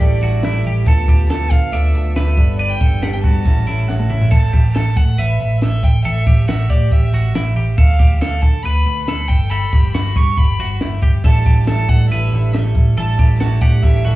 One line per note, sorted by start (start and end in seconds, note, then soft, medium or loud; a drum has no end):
0.00 0.18 A1 loud
0.00 0.20 D3 medium
0.00 0.21 G3 medium
0.00 0.22 E4 medium
0.00 0.20 G4 medium
0.00 0.23 A4 medium
0.00 0.61 D5 medium
0.00 kick medium
0.00 closed hi-hat loud
0.00 tambourine soft
0.21 0.39 A1 medium
0.21 0.54 D3 medium
0.21 0.54 G3 medium
0.21 0.53 E4 medium
0.21 0.44 F#4 medium
0.21 0.51 A4 medium
0.21 closed hi-hat medium
0.21 tambourine soft
0.43 0.61 A1 loud
0.43 0.66 E4 medium
0.43 snare loud
0.43 closed hi-hat loud
0.43 tambourine medium
0.53 0.86 G3 medium
0.53 0.86 E4 medium
0.53 0.86 A4 medium
0.64 0.83 A1 loud
0.64 0.88 G4 medium
0.64 closed hi-hat medium
0.64 tambourine soft
0.85 1.04 D2 loud
0.85 1.28 D3 medium
0.85 1.29 B3 medium
0.85 1.29 F4 medium
0.85 1.31 A4 medium
0.85 1.08 A4 loud
0.85 1.27 A5 loud
0.85 kick loud
0.85 closed hi-hat loud
0.85 tambourine medium
1.08 1.26 D2 loud
1.08 1.30 G4 medium
1.08 kick loud
1.08 closed hi-hat medium
1.08 tambourine medium
1.29 1.47 D2 loud
1.29 1.71 D3 medium
1.29 1.72 B3 medium
1.29 1.73 F4 medium
1.29 1.71 A4 medium
1.29 1.75 A4 medium
1.29 1.53 A5 loud
1.29 snare loud
1.29 closed hi-hat medium
1.29 tambourine medium
1.51 1.69 D3 loud
1.51 1.74 F5 medium
1.51 kick medium
1.51 closed hi-hat medium
1.51 tambourine medium
1.72 1.90 D2 loud
1.72 1.93 D3 medium
1.72 1.94 B3 medium
1.72 1.95 F4 medium
1.72 1.96 A4 medium
1.72 2.14 D5 medium
1.72 2.16 E5 medium
1.72 closed hi-hat medium
1.94 2.12 D2 loud
1.94 2.27 D3 medium
1.94 2.27 B3 medium
1.94 2.27 F4 medium
1.94 2.25 A4 medium
1.94 closed hi-hat medium
2.16 2.34 D2 loud
2.16 2.57 B4 medium
2.16 2.57 E5 medium
2.16 snare loud
2.16 closed hi-hat loud
2.16 tambourine medium
2.26 2.38 B3 soft
2.26 2.38 F4 soft
2.26 2.38 A4 medium
2.37 2.73 G1 medium
2.37 3.02 G3 medium
2.37 3.03 B3 medium
2.37 3.02 D4 medium
2.37 3.04 A4 medium
2.37 kick medium
2.37 closed hi-hat medium
2.37 tambourine medium
2.59 2.80 B4 loud
2.59 2.71 D5 medium
2.59 closed hi-hat loud
2.59 tambourine medium
2.70 3.02 G5 loud
2.81 2.99 G1 medium
2.81 3.03 A4 medium
2.81 kick loud
2.81 closed hi-hat medium
2.81 tambourine medium
3.02 3.20 G1 medium
3.02 3.45 G3 medium
3.02 3.46 B3 medium
3.02 3.46 D4 medium
3.02 3.24 G4 medium
3.02 3.47 A4 medium
3.02 3.08 F#5 medium
3.02 snare loud
3.02 closed hi-hat medium
3.02 tambourine medium
3.13 3.18 G5 medium
3.23 3.47 G2 loud
3.23 3.65 F#4 medium
3.23 4.06 A5 loud
3.23 kick medium
3.23 closed hi-hat medium
3.23 tambourine medium
3.45 3.63 A1 medium
3.45 3.65 G3 medium
3.45 3.67 C#4 medium
3.45 3.68 E4 medium
3.45 3.68 A4 medium
3.45 kick medium
3.45 closed hi-hat medium
3.45 tambourine soft
3.66 3.85 A1 loud
3.66 3.99 G3 medium
3.66 4.00 C#4 medium
3.66 3.89 E4 medium
3.66 4.00 E4 medium
3.66 3.98 A4 medium
3.66 closed hi-hat medium
3.66 tambourine soft
3.88 4.07 A1 medium
3.88 4.10 F#4 medium
3.88 snare medium
3.88 tambourine medium
4.00 4.34 C#4 medium
4.00 4.33 E4 medium
4.00 4.32 A4 medium
4.00 high tom medium
4.10 4.28 A1 medium
4.10 4.31 E4 medium
4.10 mid tom medium
4.10 tambourine medium
4.21 floor tom medium
4.31 4.50 A1 loud
4.31 4.53 A4 medium
4.31 4.72 A5 loud
4.31 kick loud
4.31 crash medium
4.31 tambourine medium
4.53 4.71 A1 loud
4.53 4.75 G4 medium
4.53 kick loud
4.53 hi-hat pedal medium
4.53 open hi-hat medium
4.53 tambourine medium
4.74 4.93 A1 medium
4.74 5.16 A4 medium
4.74 4.98 A5 loud
4.74 snare loud
4.74 hi-hat pedal medium
4.74 open hi-hat medium
4.74 tambourine medium
4.96 5.14 A2 loud
4.96 5.20 F#5 loud
4.96 kick medium
4.96 hi-hat pedal medium
4.96 open hi-hat medium
4.96 tambourine medium
5.18 5.36 A1 loud
5.18 5.62 B4 medium
5.18 5.62 E5 loud
5.18 hi-hat pedal medium
5.18 open hi-hat medium
5.39 5.58 A1 loud
5.39 hi-hat pedal medium
5.39 open hi-hat medium
5.39 tambourine soft
5.61 5.79 A1 medium
5.61 6.03 A4 medium
5.61 5.85 E5 medium
5.61 snare loud
5.61 hi-hat pedal medium
5.61 open hi-hat loud
5.61 tambourine medium
5.82 6.01 A1 loud
5.82 6.05 G5 medium
5.82 kick medium
5.82 hi-hat pedal medium
5.82 open hi-hat medium
5.82 tambourine soft
6.04 6.23 A1 loud
6.04 6.26 A4 loud
6.04 6.46 E5 medium
6.04 hi-hat pedal medium
6.04 open hi-hat loud
6.04 tambourine medium
6.26 6.44 A1 medium
6.26 6.48 G4 medium
6.26 kick loud
6.26 hi-hat pedal medium
6.26 open hi-hat medium
6.26 tambourine medium
6.47 6.66 A1 loud
6.47 6.69 F#4 medium
6.47 6.72 E5 medium
6.47 snare loud
6.47 hi-hat pedal medium
6.47 open hi-hat medium
6.47 tambourine medium
6.69 6.87 A2 medium
6.69 7.11 G4 medium
6.69 6.93 D5 medium
6.69 kick medium
6.69 hi-hat pedal medium
6.69 open hi-hat medium
6.69 tambourine medium
6.91 7.09 A1 loud
6.91 7.35 E5 medium
6.91 kick medium
6.91 hi-hat pedal medium
6.91 open hi-hat loud
7.12 7.31 A1 loud
7.12 7.35 F#4 medium
7.12 hi-hat pedal medium
7.12 open hi-hat medium
7.34 7.52 A1 loud
7.34 7.56 E4 medium
7.34 snare loud
7.34 hi-hat pedal medium
7.34 open hi-hat loud
7.34 tambourine medium
7.56 7.74 A1 loud
7.56 7.78 G4 medium
7.56 hi-hat pedal medium
7.56 open hi-hat medium
7.56 tambourine medium
7.77 7.96 D2 loud
7.77 7.99 A4 loud
7.77 8.18 F5 medium
7.77 kick loud
7.77 hi-hat pedal medium
7.77 open hi-hat loud
7.77 tambourine medium
7.99 8.18 D2 loud
7.99 8.21 G4 medium
7.99 kick loud
7.99 hi-hat pedal medium
7.99 open hi-hat medium
7.99 tambourine medium
8.21 8.39 D2 loud
8.21 8.62 A4 medium
8.21 8.43 F5 medium
8.21 snare loud
8.21 hi-hat pedal medium
8.21 open hi-hat loud
8.21 tambourine medium
8.42 8.61 D3 loud
8.42 8.64 A5 medium
8.42 kick medium
8.42 hi-hat pedal medium
8.42 open hi-hat medium
8.42 tambourine medium
8.63 8.82 D2 loud
8.63 9.06 B4 medium
8.63 9.05 B5 loud
8.63 hi-hat pedal medium
8.63 open hi-hat medium
8.63 tambourine soft
8.86 9.04 D2 loud
8.86 hi-hat pedal medium
8.86 open hi-hat medium
8.86 tambourine soft
9.06 9.25 D2 loud
9.06 9.49 A4 medium
9.06 9.30 B5 loud
9.06 snare loud
9.06 hi-hat pedal medium
9.06 open hi-hat loud
9.06 tambourine loud
9.28 9.65 G1 loud
9.28 9.51 G5 medium
9.28 kick medium
9.28 hi-hat pedal medium
9.28 open hi-hat medium
9.28 tambourine medium
9.50 9.73 A4 loud
9.50 9.93 B5 loud
9.50 hi-hat pedal medium
9.50 open hi-hat loud
9.50 tambourine medium
9.73 9.90 G1 medium
9.73 9.94 G4 medium
9.73 kick loud
9.73 hi-hat pedal medium
9.73 open hi-hat medium
9.73 tambourine medium
9.93 10.12 G1 medium
9.93 10.16 F#4 medium
9.93 10.18 B5 loud
9.93 snare loud
9.93 hi-hat pedal medium
9.93 open hi-hat medium
9.93 tambourine medium
10.16 10.34 G2 medium
10.16 10.57 G4 medium
10.16 10.39 C#6 loud
10.16 kick medium
10.16 hi-hat pedal medium
10.16 open hi-hat medium
10.16 tambourine medium
10.37 10.55 G1 loud
10.37 10.81 B5 loud
10.37 kick medium
10.37 hi-hat pedal medium
10.37 open hi-hat medium
10.37 tambourine soft
10.59 10.77 G1 medium
10.59 10.81 F#4 medium
10.59 hi-hat pedal medium
10.59 open hi-hat medium
10.59 tambourine soft
10.81 10.99 G1 loud
10.81 11.02 E4 medium
10.81 snare loud
10.81 hi-hat pedal medium
10.81 open hi-hat loud
10.81 tambourine loud
11.02 11.20 G1 medium
11.02 11.24 G4 medium
11.02 kick medium
11.02 hi-hat pedal medium
11.02 open hi-hat medium
11.02 tambourine soft
11.24 11.42 A1 loud
11.24 11.67 D3 medium
11.24 11.67 G3 medium
11.24 11.68 E4 medium
11.24 11.46 A4 loud
11.24 11.70 A4 medium
11.24 11.65 A5 loud
11.24 kick loud
11.24 hi-hat pedal medium
11.24 open hi-hat loud
11.24 tambourine medium
11.45 11.63 A1 loud
11.45 11.67 G4 medium
11.45 kick loud
11.45 hi-hat pedal medium
11.45 open hi-hat medium
11.45 tambourine medium
11.67 11.85 A1 loud
11.67 12.11 D3 medium
11.67 12.11 G3 medium
11.67 12.12 E4 medium
11.67 12.08 A4 medium
11.67 12.14 A4 medium
11.67 11.90 A5 loud
11.67 snare loud
11.67 hi-hat pedal medium
11.67 open hi-hat medium
11.67 tambourine medium
11.89 12.07 A2 loud
11.89 12.10 F#5 medium
11.89 kick medium
11.89 hi-hat pedal medium
11.89 open hi-hat medium
11.89 tambourine medium
12.10 12.28 A1 loud
12.10 12.31 D3 medium
12.10 12.32 G3 medium
12.10 12.33 E4 medium
12.10 12.55 B4 medium
12.10 12.51 E5 medium
12.10 hi-hat pedal medium
12.10 open hi-hat loud
12.10 tambourine soft
12.14 12.34 A4 medium
12.32 12.50 A1 medium
12.32 12.65 D3 medium
12.32 12.65 G3 medium
12.32 12.65 E4 medium
12.32 12.63 A4 medium
12.32 hi-hat pedal medium
12.32 open hi-hat medium
12.32 tambourine soft
12.53 12.72 A1 medium
12.53 12.95 A4 medium
12.53 12.63 E5 medium
12.53 snare loud
12.53 hi-hat pedal medium
12.53 open hi-hat loud
12.53 tambourine loud
12.64 12.97 G3 medium
12.64 12.98 E4 soft
12.64 12.97 A4 medium
12.75 12.93 A1 loud
12.75 kick medium
12.75 hi-hat pedal medium
12.75 open hi-hat medium
12.75 tambourine medium
12.96 13.15 A1 loud
12.96 13.41 D3 medium
12.96 13.41 G3 medium
12.96 13.41 E4 medium
12.96 13.19 A4 loud
12.96 13.44 A4 medium
12.96 13.38 A5 loud
12.96 hi-hat pedal medium
12.96 open hi-hat loud
12.96 tambourine medium
13.19 13.37 A1 medium
13.19 13.40 G4 medium
13.19 kick loud
13.19 hi-hat pedal medium
13.19 open hi-hat medium
13.19 tambourine medium
13.40 13.58 A1 loud
13.40 13.82 D3 medium
13.40 13.83 G3 medium
13.40 13.84 E4 medium
13.40 13.61 F#4 medium
13.40 13.63 A5 loud
13.40 snare loud
13.40 hi-hat pedal medium
13.40 open hi-hat medium
13.40 tambourine medium
13.44 13.86 A4 medium
13.61 13.80 A2 loud
13.61 14.03 G4 medium
13.61 13.85 F#5 medium
13.61 kick medium
13.61 hi-hat pedal medium
13.61 open hi-hat medium
13.61 tambourine medium
13.83 14.01 A1 loud
13.83 14.04 D3 medium
13.83 14.05 G3 medium
13.83 14.06 E4 medium
13.83 14.07 A4 medium
13.83 14.15 E5 loud
13.83 kick medium
13.83 hi-hat pedal medium
13.83 open hi-hat loud
14.04 14.15 A1 loud
14.04 14.15 D3 medium
14.04 14.15 G3 medium
14.04 14.15 E4 medium
14.04 14.15 F#4 medium
14.04 14.15 A4 medium
14.04 hi-hat pedal medium
14.04 open hi-hat medium
14.04 tambourine soft